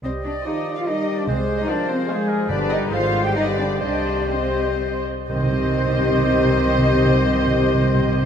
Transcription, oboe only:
X:1
M:3/4
L:1/8
Q:1/4=126
K:Cm
V:1 name="Oboe"
e2 d4 | c4 c B | =B2 c4 | c4- c z |
c6- | c6 |]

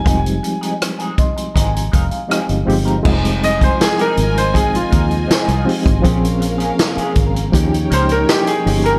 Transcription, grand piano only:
X:1
M:4/4
L:1/16
Q:1/4=80
K:Fm
V:1 name="Grand piano"
a8- a2 z6 | z2 e c A B2 c A F6- F- | F3 z6 z c B G A2 B |]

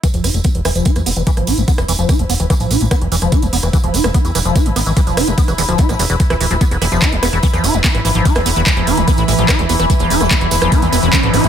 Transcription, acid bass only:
X:1
M:4/4
L:1/16
Q:1/4=146
K:none
V:1 name="Acid bass" clef=bass
E, F, E E, B, E, E, F, E E, B, E, E, F, E E, | B, E, E, F, E E, B, E, E, F, E E, B, E, E, F, | E E, B, E, E, F, E E, B, E, E, F, E E, B, E, | E, F, E E, B, E, E, F, E E, E, E, E, E, E, F, |
B, E, E, F, E E, B, E, E, F, E E, B, E, E, F, | E E, B, E, E, F, E E, B, E, E, F, E E, B, E, | E, F, E E, B, E, E, F, E E, B, E, E, F, E E, |]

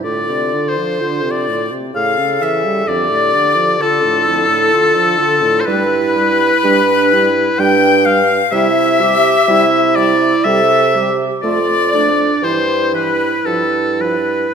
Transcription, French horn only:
X:1
M:3/4
L:1/16
Q:1/4=62
K:C
V:1 name="French horn" clef=bass
A,, C, D, F, D, C, A,, C, A,, ^C, E, G, | F,, A,, D, F, D, A,, F,, A,, D, F, D, A,, | G,2 G,2 G,2 G,2 G,2 G,2 | G,2 G,2 G,2 G,2 G,2 G,2 |
A,2 A,2 E,2 E,2 F,2 F,2 |]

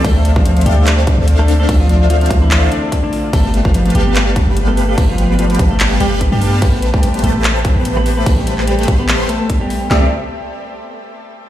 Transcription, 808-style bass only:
X:1
M:4/4
L:1/16
Q:"Swing 16ths" 1/4=146
K:C
V:1 name="808-style bass" clef=bass
D,,6 D,,4- D,, D,,4- D,, | D,,6 D,,4 z6 | G,,,6 G,,,4- G,,, G,,,4- G,,, | G,,,6 G,,,4 G,,,3 G,,3 |
A,,,6 A,,,4- A,,, A,,,4- A,,, | A,,,6 A,,,4 z6 | C,,2 z12 z2 |]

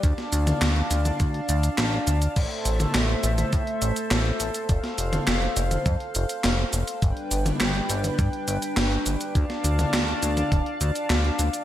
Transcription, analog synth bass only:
X:1
M:4/4
L:1/8
Q:1/4=103
K:Ddor
V:1 name="Analog synth bass" clef=bass
D,, D,, D,, D,, D,, D,, A,,, D,, | A,,, A,,, A,,, A,,, A,, A,,, A,,, A,,, | F,,, F,,, F,,, F,,, F,, F,,, F,,, F,,, | G,,, G,,, G,,, G,,, G,, G,,, G,,, G,,, |
D,, D,, D,, D,, D,,, D,, D,, D,, |]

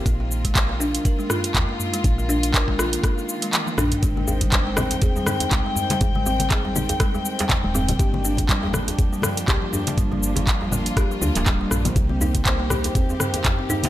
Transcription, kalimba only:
X:1
M:4/4
L:1/16
Q:"Swing 16ths" 1/4=121
K:Gphr
V:1 name="Kalimba"
B, B, z A, z B, D z B A, F z B, B, z A, | z B, D z B A, F z B, B, z A, z B, D z | A, A, z G, z A, C z A G, E z A, A, z G, | z A, C z A G, E z A, A, z G, z A, C z |
G F, D z G, G, z F, z G, B, z G F, D z | G, G, z F, z G, B, z G F, D z G, G, z F, | z C E z c B, G z C C z B, z C E z |]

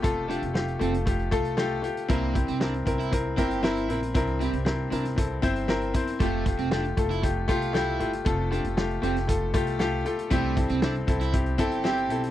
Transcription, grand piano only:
X:1
M:4/4
L:1/8
Q:1/4=117
K:C
V:1 name="Grand piano"
[A,FA] [A,FG] [A,FG] [A,FA] [A,FG] [A,FA] [A,FG] [A,FG] | [CE_B] [CEG] [CEB] [CEB] [CEB] [CEB] [CEB] [CEB] | [CE_B] [CEG] [CEB] [CEB] [CEA] [CEc] [CEB] [CEc] | [A,FG] [A,FG] [A,FG] [A,FA] [A,FG] [A,FG] [A,FG] [A,FG] |
[A,FA] [A,FG] [A,FG] [A,FG] [A,FA] [A,FG] [A,FGa] [A,FAg] | [CEG] [CEA] [CEA] [CEA] [CEG] [CEA] [CEG] [CEA] |]
V:2 name="Grand piano" clef=bass
C,3 z4 z | G,,3 z4 z | G,,3 z4 z | C,3 z4 z |
C,3 z4 z | G,,3 z4 z |]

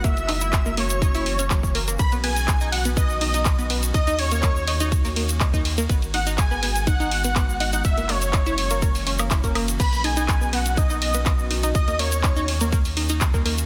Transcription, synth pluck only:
X:1
M:4/4
L:1/16
Q:1/4=123
K:B
V:1 name="Synth pluck"
[A,A] z [Dd] [Ee] z [A,A] [A,A] z [Dd] [Ee] z [Cc] [F,F] z [A,A] [A,A] | z [B,B] [B,B] z [Dd] [Dd] z [B,B] [B,B] z [Dd] [Dd] z [B,B] [B,B] z | [Dd] [Dd] z [A,A] [A,A] z [Dd] [Dd] z [A,A] [A,A] z [Dd] [Dd] z [A,A] | [B,B] z [Dd] [Dd] z [B,B] [B,B] z [Dd] [Dd] z [B,B] [B,B] z [Dd] [Dd] |
z [A,A] [A,A] z [Dd] [Ee] z [A,A] [A,A] z [Cc] [A,A] [Ee] [A,A] [A,A] z | [B,B] z [Dd] [Dd] z [B,B] [B,B] z [Dd] [Dd] z [B,B] [B,B] z [Dd] [Dd] | z [A,A] [A,A] z [Dd] [Dd] z [A,A] [A,A] z [Dd] [Dd] z [A,A] [A,A] z |]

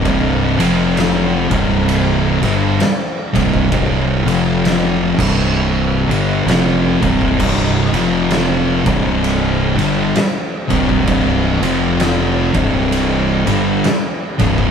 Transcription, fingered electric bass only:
X:1
M:4/4
L:1/8
Q:"Swing" 1/4=65
K:Fdor
V:1 name="Fingered electric bass" clef=bass
C,,, F,,,2 C,,,2 G,,, z C,,, | C,,, F,,,2 C,,,2 G,,, F,,, C,,, | C,,, F,,,2 C,,,2 G,,, z C,,, | C,,, F,,,2 C,,,2 G,,, z C,,, |]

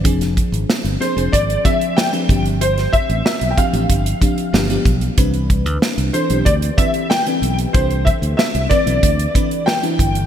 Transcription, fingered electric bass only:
X:1
M:4/4
L:1/16
Q:1/4=94
K:Gmix
V:1 name="Fingered electric bass" clef=bass
F,,,3 _A,,, z G,,, z F,,, A,,,2 z4 G,,,2- | G,,,3 A,,, z B,,, z A,,, G,,,2 z2 G,,,2 B,,,2 | C,,3 D,, z C,, z B,,, D,,2 z4 B,,,2 | C,,3 D,, z C,, z B,,, D,,2 z4 G,,,2 |]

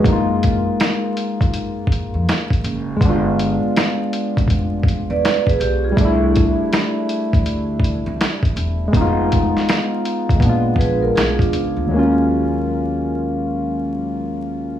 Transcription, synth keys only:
X:1
M:4/4
L:1/8
Q:"Swing 16ths" 1/4=81
K:Gb
V:1 name="Synth keys"
[A,B,EF]8 | [A,=B,=DF]8 | [=G,=A,=D=E]8 | [A,CEF]4 [A,C=DF]4 |
[E,,G,A,B,DF]8 |]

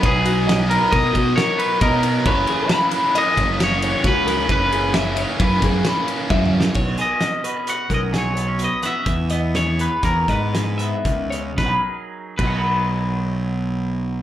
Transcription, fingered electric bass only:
X:1
M:5/4
L:1/8
Q:1/4=132
K:B
V:1 name="Fingered electric bass" clef=bass
B,,,4 B,, B,, z2 B,,2 | F,,, z4 F,,,3 C,,2 | F,,,4 F,, F,, z2 F,,2 | B,,, z4 B,,,4 z |
E,,4 E,, G,,3 C,,2 | B,,, z2 B,,,6- B,,, |]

